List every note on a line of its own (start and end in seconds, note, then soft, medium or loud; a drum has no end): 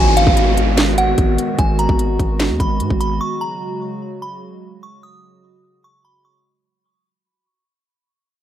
0.00 0.26 G#1 loud
0.00 3.18 D#3 medium
0.00 6.41 G#3 medium
0.00 3.18 B3 medium
0.00 6.41 F#4 medium
0.00 0.15 G#5 medium
0.00 downlifter medium
0.17 0.94 F5 medium
0.17 closed hi-hat medium
0.27 1.14 G#1 loud
0.27 kick medium
0.37 closed hi-hat medium
0.57 closed hi-hat medium
0.78 snare loud
0.78 clap medium
0.78 closed hi-hat medium
0.98 1.55 F#5 medium
0.98 closed hi-hat medium
1.18 1.38 G#1 loud
1.18 kick medium
1.18 closed hi-hat medium
1.38 closed hi-hat medium
1.59 1.88 G#1 loud
1.59 1.78 G#5 medium
1.59 kick loud
1.59 closed hi-hat medium
1.79 2.56 A#5 medium
1.79 closed hi-hat medium
1.89 2.18 G#1 loud
1.89 kick medium
1.99 closed hi-hat medium
2.19 2.51 G#1 loud
2.19 kick loud
2.19 closed hi-hat medium
2.40 snare loud
2.40 clap medium
2.40 closed hi-hat medium
2.50 2.60 D#2 loud
2.60 2.82 G#1 loud
2.60 2.98 B5 medium
2.60 kick medium
2.60 closed hi-hat medium
2.80 2.90 G#2 loud
2.80 closed hi-hat medium
2.90 3.20 G#1 loud
2.90 kick medium
3.01 3.19 B5 medium
3.01 closed hi-hat medium
3.21 6.42 C#3 medium
3.21 6.42 F#3 medium
3.21 3.40 C#6 medium
3.41 4.18 A#5 medium
4.22 4.79 B5 medium
4.83 5.02 C#6 medium
5.03 5.80 D#6 medium
5.84 6.03 C#6 medium
6.05 6.24 B5 medium
6.25 6.44 C#6 medium